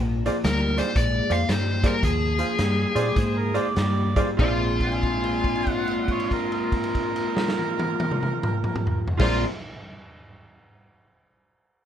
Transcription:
Already playing: fingered electric bass A#1, clean electric guitar A#2 F3
0.26 clean electric guitar A#2 F3, upright piano F4 G#4 C5 D5, closed hi-hat
0.44 fingered electric bass D2, clean electric guitar A#2 G3, lead electric guitar A#4, snare, closed hi-hat
0.77 clean electric guitar A#2 G3, upright piano F4 G#4 C5 D5, lead electric guitar C5, snare, closed hi-hat
0.95 fingered electric bass A#1, clean electric guitar A#2 G#3, lead electric guitar D5, kick, closed hi-hat
1.30 fingered electric bass F2, clean electric guitar A#2 G#3, upright piano F4 G#4 C5 D5, lead electric guitar F5, closed hi-hat
1.49 fingered electric bass G2, clean electric guitar A#2 G3, lead electric guitar C5, snare, closed hi-hat
1.83 clean electric guitar A#2 G3, upright piano F4 G#4 C5 D5, lead electric guitar A#4, kick, closed hi-hat
2.03 fingered electric bass D#2, clean electric guitar A#2 F3, lead electric guitar G#4, kick, closed hi-hat
2.38 clean electric guitar A#2 F3, upright piano F4 G#4 C5 F5, closed hi-hat
2.58 fingered electric bass G2, clean electric guitar A#2 G3, snare, closed hi-hat
2.95 fingered electric bass A#2, clean electric guitar A#2 G3, upright piano F4 G#4 C5 D5, harmonica D5, closed hi-hat
3.16 fingered electric bass G#2, clean electric guitar A#2 G#3, harmonica C5, kick, closed hi-hat
3.38 harmonica A#4
3.54 clean electric guitar A#2 G#3, upright piano F4 G#4 C5 D5, harmonica D5, closed hi-hat
3.76 fingered electric bass G2, clean electric guitar A#2 G3, harmonica D5, snare, closed hi-hat
4.16 clean electric guitar A#2 G3, upright piano F4 G#4 C5 D5, kick, closed hi-hat
4.37 fingered electric bass A#1, clean electric guitar A#2 G#3 C4, upright piano F4 G#4 C5, lead electric guitar F4, kick, crash
4.41 clean electric guitar D4, upright piano D5
4.80 harmonica G#5, kick, crash
4.92 crash
5.03 kick, crash
5.24 crash
5.44 kick, crash
5.55 crash
5.67 harmonica F#5, kick, crash
5.88 crash
6.08 harmonica C#5, kick, crash
6.20 crash
6.31 harmonica A#4, kick, crash
6.52 harmonica A#4, crash
6.72 kick, crash
6.84 crash
6.95 kick, crash
7.16 crash
7.37 snare
7.48 snare
7.59 high tom
7.79 high tom
8.00 high tom
8.11 mid tom
8.23 mid tom
8.43 mid tom
8.64 mid tom
8.76 mid tom
8.87 floor tom
9.08 floor tom
9.17 fingered electric bass A#1, clean electric guitar A#2 G#3, upright piano F4 G#4 C5, lead electric guitar F4, harmonica A#4, kick, snare, crash
9.21 clean electric guitar C4 D4, upright piano D5

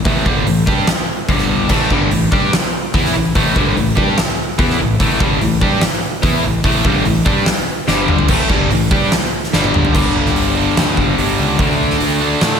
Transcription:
0.04 fingered electric bass A1, distorted electric guitar A2 E3 A3, kick, open hi-hat
0.26 fingered electric bass G1, distorted electric guitar G2 D3 G3, kick
0.46 fingered electric bass A1, distorted electric guitar A2 E3, open hi-hat
0.67 fingered electric bass G2, distorted electric guitar G3 D4 G4, kick
0.87 snare, open hi-hat
1.28 fingered electric bass G1, distorted electric guitar G2 D3 G3, kick, open hi-hat
1.38 snare
1.69 fingered electric bass A1, distorted electric guitar A2 E3 A3, kick, crash
1.90 fingered electric bass G1, distorted electric guitar G2 D3 G3, kick
2.11 fingered electric bass A1, distorted electric guitar A2 E3, open hi-hat
2.32 fingered electric bass G2, distorted electric guitar G3 D4 G4, kick
2.53 snare, open hi-hat
2.94 fingered electric bass E2, distorted electric guitar E3 B3 E4, kick, open hi-hat
3.05 snare
3.15 fingered electric bass A1, distorted electric guitar A2 E3
3.35 fingered electric bass A1, distorted electric guitar A2 E3 A3, kick, open hi-hat
3.56 fingered electric bass G1, distorted electric guitar G2 D3 G3, kick
3.76 fingered electric bass A1, distorted electric guitar A2 E3, open hi-hat
3.95 fingered electric bass G2, distorted electric guitar G3 D4 G4, kick
4.18 snare, open hi-hat
4.58 fingered electric bass E2, distorted electric guitar E3 B3 E4, kick, open hi-hat
4.70 snare
4.79 fingered electric bass A1, distorted electric guitar A2 E3
5.00 fingered electric bass A1, distorted electric guitar A2 E3 A3, kick, open hi-hat
5.20 fingered electric bass G1, distorted electric guitar G2 D3 G3, kick
5.41 fingered electric bass A1, distorted electric guitar A2 E3, open hi-hat
5.61 fingered electric bass G2, distorted electric guitar G3 D4 G4, kick
5.81 snare, open hi-hat
6.22 fingered electric bass E2, distorted electric guitar E3 B3 E4, kick, open hi-hat
6.44 fingered electric bass A1, distorted electric guitar A2 E3
6.64 fingered electric bass A1, distorted electric guitar A2 E3 A3, kick, open hi-hat
6.85 fingered electric bass G1, distorted electric guitar G2 D3 G3, kick
7.05 fingered electric bass A1, distorted electric guitar A2 E3, open hi-hat
7.25 fingered electric bass G2, distorted electric guitar G3 D4 G4, kick
7.46 snare, open hi-hat
7.88 fingered electric bass G1, distorted electric guitar G2 D3 G3, snare
8.08 mid tom
8.19 floor tom
8.28 fingered electric bass A1, distorted electric guitar A2 E3 A3, kick, crash
8.50 fingered electric bass G1, distorted electric guitar G2 D3 G3, kick
8.70 fingered electric bass A1, distorted electric guitar A2 E3, open hi-hat
8.91 fingered electric bass G2, distorted electric guitar G3 D4 G4, kick
9.12 snare, open hi-hat
9.44 snare
9.53 fingered electric bass G1, distorted electric guitar G2 D3 G3, snare
9.64 high tom
9.74 mid tom
9.85 floor tom
9.94 fingered electric bass G1, distorted electric guitar G2 D3 G3, kick, crash
10.15 fingered electric bass G1
10.26 snare
10.35 fingered electric bass G1, open hi-hat
10.55 distorted electric guitar G2 D3 G3
10.76 fingered electric bass D2, overdriven electric guitar G2 D3 G3, snare, open hi-hat
10.97 fingered electric bass G1, kick
11.17 fingered electric bass G1, distorted electric guitar G2 D3 G3, open hi-hat
11.39 fingered electric bass C#2
11.58 fingered electric bass D2, distorted electric guitar D3 A3 D4, kick, open hi-hat
11.79 fingered electric bass D2
11.90 snare
12.00 fingered electric bass D2, open hi-hat
12.21 distorted electric guitar D3 A3 D4
12.41 fingered electric bass A2, overdriven electric guitar D3 A3 D4, snare, open hi-hat

